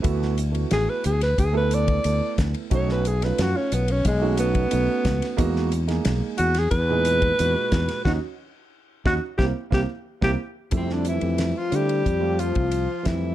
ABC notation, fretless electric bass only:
X:1
M:4/4
L:1/16
Q:1/4=90
K:Cphr
V:1 name="Fretless electric bass" clef=bass
=D,,4 =A,,, z D,,2 D,,4 D,, z D,, z | _C,,4 _G,, z C,,2 C,,4 C,, z D,, z | =E,,4 =B,,, z E,,2 E,,4 E,, z E,, z | E,, z4 z E,, z C,, z C,, z2 C,, z2 |
[K:F] F,,3 F,,2 z D,2 F,,3 C,,2 z F,,2 |]